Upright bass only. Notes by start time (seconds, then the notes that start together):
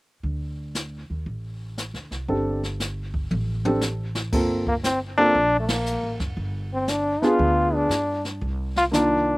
0.23 D2
1.10 D#2
1.26 A1
1.94 D2
2.11 C2
2.28 G1
3.31 A1
4.33 G1
5.35 A#1
6.03 A1
6.21 F#1
6.37 G1
7.22 muted upright bass stroke
7.39 D2
7.89 G2
8.41 C2